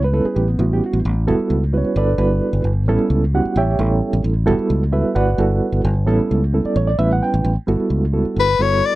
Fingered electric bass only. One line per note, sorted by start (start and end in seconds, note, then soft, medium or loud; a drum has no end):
0.00 0.21 C#2 medium
0.25 muted fingered electric bass stroke soft
0.36 0.57 A1 medium
0.59 0.79 A1 medium
0.93 1.04 A1 medium
1.05 1.30 A1 medium
1.28 1.38 G1 medium
1.39 muted fingered electric bass stroke soft
1.50 1.81 C#2 medium
1.84 muted fingered electric bass stroke soft
1.96 2.17 G1 medium
2.18 2.39 G1 medium
2.53 2.63 G1 medium
2.64 2.86 G1 medium
2.86 2.97 A1 medium
2.99 muted fingered electric bass stroke soft
3.10 3.41 C#2 medium
3.45 muted fingered electric bass stroke soft
3.56 3.77 A1 medium
3.79 4.00 A1 medium
4.13 4.24 A1 medium
4.24 4.49 A1 medium
4.48 4.58 G1 medium
4.59 muted fingered electric bass stroke soft
4.70 5.01 C#2 medium
5.04 muted fingered electric bass stroke soft
5.16 5.37 G1 medium
5.38 5.59 G1 medium
5.72 5.83 G1 medium
5.85 6.07 G1 medium
6.07 6.18 A1 loud
6.19 muted fingered electric bass stroke soft
6.31 6.62 C#2 medium
6.65 muted fingered electric bass stroke soft
6.76 6.97 A1 medium
6.99 7.20 A1 medium
7.34 7.44 A1 medium
7.44 7.55 A1 medium
7.68 7.79 G1 medium
7.80 muted fingered electric bass stroke soft
7.90 8.22 C#2 medium
8.25 muted fingered electric bass stroke soft
8.36 8.58 G1 medium
8.59 8.80 G1 medium